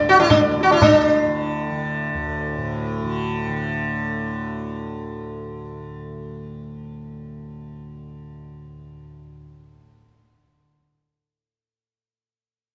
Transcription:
Already playing: tanpura D2 D3
0.00 tanpura A2, sitar D5
0.09 sitar F#4, tabla te
0.20 sitar E4, tabla na
0.30 sitar D4, tabla na, tabla ge
0.41 tanpura D3, sitar D5
0.51 sitar D5
0.61 sitar F#4, tabla te
0.71 sitar E4, tabla na
0.80 tanpura A2, sitar D4, tabla na, tabla ge
1.26 tanpura D3
1.69 tanpura D3
2.14 tanpura D2
2.57 tanpura A2
3.02 tanpura D3
3.47 tanpura D3

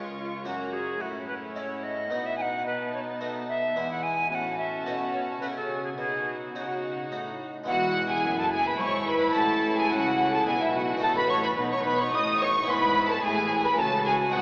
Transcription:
Already playing: harpsichord C#2 G#3 C#4 F4, cello section C#2, viola section C#4, violin section F4 C#6
0.18 recorder F4
0.45 harpsichord F#2 A#3 C#4 F#4, cello section F#2, recorder F#4, violin section F#4 A#5
0.73 recorder G#4
1.00 harpsichord A2, cello section A2, viola section C#4, violin section E4 F#5, recorder F#4
1.28 recorder B4
1.55 harpsichord C#4 E4, recorder C#5 D#5
1.83 recorder D#5
2.11 harpsichord B2 B3 D#4, cello section B2, viola section B3, violin section D#4
2.26 recorder E5
2.37 recorder G#5
2.41 recorder F#5
2.66 recorder B4, violin section A5
2.94 recorder C#5
3.20 harpsichord A3 B3 D#4, recorder D#5
3.49 recorder E5
3.76 harpsichord E2 G#3 B3 E4, cello section E2, violin section E4 G#5
3.92 recorder F#5
4.03 recorder G#5
4.31 cello section A2, harpsichord A2, viola section C#4, violin section F#4 A5, recorder G#5
4.35 recorder F#5
4.58 recorder E5
4.86 harpsichord B2 A3 C#4 F#4, cello section B2, recorder D#5
5.14 recorder C#5
5.40 harpsichord C#3 A3 C#4 F#4, cello section C#3, recorder B4, violin section G#5
5.55 recorder A4
5.84 recorder G#4
5.98 harpsichord B2, cello section B2, viola section D#4, violin section F#4 F#5, recorder G#4
6.56 harpsichord C#3 D#4 F#4, cello section C#3, viola section D#4, violin section F#4 F#5, recorder F#4
7.12 harpsichord A2 D#4 F#4, cello section A2
7.64 harpsichord G#3 B3 E4, recorder F#5
7.68 double bass section E1, harpsichord E2, cello section E2, viola section E4, violin section F#4 F#5
8.11 violin section G#4 G#5, recorder G#5
8.24 double bass section F#1, cello section F#2, harpsichord F#2
8.37 violin section A4 A5, recorder A5
8.52 violin section G#4 G#5, recorder G#5
8.65 violin section B4 B5, recorder B5
8.79 double bass section G#1, cello section G#2, harpsichord G#2, violin section C#5 C#6, recorder C#6
9.07 violin section B4 B5, recorder B5
9.33 double bass section A1, cello section A2, harpsichord A2 C#4 F#4, violin section A4 A5, recorder A5
9.78 violin section G#4 G#5, recorder G#5
9.91 double bass section C#2, harpsichord C#3, cello section C#3, violin section F#4 F#5, recorder G#5
9.97 recorder F#5
10.32 violin section A4 A5, recorder A5
10.46 double bass section B1, harpsichord B2, cello section B2, violin section G#4 G#5, recorder G#5
10.60 violin section E4 E5, recorder E5
10.74 violin section F#4 F#5, recorder F#5
10.97 harpsichord B3 D#4 F#4
11.02 double bass section A1, harpsichord A2, cello section A2, viola section F#4, violin section A4 A5, recorder A5
11.15 violin section B4 B5, recorder B5
11.29 violin section C#5 C#6, recorder C#6
11.44 violin section B4 B5, recorder B5
11.58 double bass section B1, harpsichord B2, cello section B2, viola section D#4
11.71 violin section C#5 C#6, recorder C#6
11.84 violin section B4 B5, recorder B5
11.99 violin section C#5 C#6, recorder C#6
12.12 double bass section A1, harpsichord A2, cello section A2, violin section D#5 D#6, recorder D#6
12.40 violin section C#5 C#6, recorder C#6
12.63 harpsichord B3 E4 G#4
12.67 double bass section G#1, harpsichord G#2, cello section G#2, viola section E4, violin section B4 B5, recorder C6
12.75 recorder B5
13.09 violin section A4 A5, recorder A5
13.21 double bass section A1, harpsichord A2, cello section A2, viola section E4, violin section G#4 G#5, recorder G#5
13.63 violin section B4 B5, recorder B5
13.78 double bass section C#2, harpsichord C#3, cello section C#3, viola section F#4, violin section A4 A5, recorder A5 A#5
14.05 violin section G#4 G#5, recorder G#5
14.29 harpsichord G#3 D#4 G#4, violin section F#4 F#5, recorder F#5
14.33 double bass section C2, harpsichord C3, cello section C3

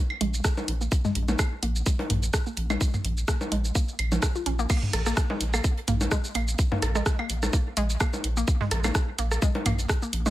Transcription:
0.10 high woodblock
0.21 analog synth bass A#1, synth arpeggio sound G#3, closed hi-hat
0.34 closed hi-hat, shaker
0.44 synth arpeggio sound A#3, kick, cross-stick, snare, closed hi-hat, shaker
0.57 low bongo, shaker
0.68 analog synth bass A#1, closed hi-hat
0.81 synth arpeggio sound A#3, shaker
0.92 kick, closed hi-hat, shaker
1.05 synth arpeggio sound G#3, snare, mid tom, shaker
1.15 analog synth bass A#1, closed hi-hat
1.28 synth arpeggio sound A#3, snare, low bongo, shaker
1.39 kick, cross-stick, snare, closed hi-hat, high woodblock, shaker
1.63 analog synth bass A#1, synth arpeggio sound A#3, closed hi-hat
1.76 shaker
1.86 synth arpeggio sound G#3, kick, closed hi-hat, shaker
1.99 closed hi-hat, low bongo
2.10 analog synth bass A#1, synth arpeggio sound A#3, closed hi-hat, mid tom
2.22 closed hi-hat, shaker
2.33 kick, cross-stick, snare, closed hi-hat, shaker
2.47 synth arpeggio sound A#3, shaker
2.57 analog synth bass A#1, closed hi-hat
2.70 synth arpeggio sound G#3, low bongo, high woodblock, shaker
2.81 kick, closed hi-hat, shaker
2.94 synth arpeggio sound A#3, mid tom, shaker
3.04 analog synth bass A#1, closed hi-hat
3.17 shaker
3.28 synth arpeggio sound A#3, kick, cross-stick, snare, closed hi-hat, shaker
3.41 low bongo, shaker
3.52 analog synth bass A#1, synth arpeggio sound G#3, closed hi-hat
3.65 shaker
3.75 synth arpeggio sound A#3, kick, closed hi-hat, shaker
3.88 shaker
3.99 analog synth bass A#1, closed hi-hat, high woodblock
4.12 synth arpeggio sound F3, closed hi-hat, low bongo, shaker
4.22 kick, cross-stick, snare, closed hi-hat, shaker
4.35 synth arpeggio sound F4, shaker
4.46 analog synth bass A#1, synth arpeggio sound C#4, closed hi-hat
4.59 synth arpeggio sound A#3, shaker
4.70 synth arpeggio sound A#3, kick, closed hi-hat, crash, high woodblock, shaker
4.82 snare, mid tom
4.93 analog synth bass A#1, cross-stick, closed hi-hat, shaker
5.06 synth arpeggio sound A#3, cross-stick, snare, shaker
5.16 kick, cross-stick, snare, closed hi-hat, shaker
5.30 synth arpeggio sound G#3, low bongo
5.41 analog synth bass A#1, closed hi-hat, shaker
5.54 synth arpeggio sound A#3, cross-stick, high woodblock, shaker
5.64 kick, closed hi-hat, shaker
5.77 closed hi-hat
5.88 analog synth bass A#1, synth arpeggio sound A#3, closed hi-hat, mid tom, shaker
6.01 closed hi-hat, low bongo, shaker
6.11 synth arpeggio sound G#3, kick, cross-stick, snare, closed hi-hat, shaker
6.24 shaker
6.34 analog synth bass A#1, synth arpeggio sound A#3, closed hi-hat, high woodblock
6.48 shaker
6.58 kick, closed hi-hat, shaker
6.72 synth arpeggio sound A#3, mid tom, low bongo
6.82 analog synth bass A#1, cross-stick, closed hi-hat, shaker
6.95 synth arpeggio sound G#3, cross-stick, shaker
7.06 kick, cross-stick, snare, closed hi-hat, shaker
7.19 synth arpeggio sound A#3, high woodblock
7.30 analog synth bass A#1, closed hi-hat, shaker
7.43 cross-stick, low bongo, shaker
7.53 synth arpeggio sound A#3, kick, closed hi-hat, shaker
7.77 analog synth bass A#1, synth arpeggio sound G#3, closed hi-hat, shaker
7.90 closed hi-hat, shaker
8.00 synth arpeggio sound A#3, kick, cross-stick, snare, closed hi-hat, high woodblock, shaker
8.13 low bongo, shaker
8.24 analog synth bass A#1, closed hi-hat
8.37 synth arpeggio sound A#3, shaker
8.47 kick, closed hi-hat, shaker
8.61 synth arpeggio sound G#3, snare, mid tom
8.71 analog synth bass A#1, cross-stick, closed hi-hat, shaker
8.84 synth arpeggio sound A#3, cross-stick, snare, low bongo, high woodblock, shaker
8.95 kick, cross-stick, snare, closed hi-hat, shaker
9.18 analog synth bass A#1, synth arpeggio sound A#3, closed hi-hat, shaker
9.31 cross-stick, shaker
9.42 synth arpeggio sound G#3, kick, closed hi-hat, shaker
9.55 closed hi-hat, low bongo
9.65 analog synth bass A#1, synth arpeggio sound A#3, closed hi-hat, mid tom, high woodblock, shaker
9.79 closed hi-hat, shaker
9.88 kick, cross-stick, snare, closed hi-hat, shaker
10.02 synth arpeggio sound A#3, shaker
10.13 analog synth bass A#1, closed hi-hat
10.26 synth arpeggio sound G#3, low bongo, shaker

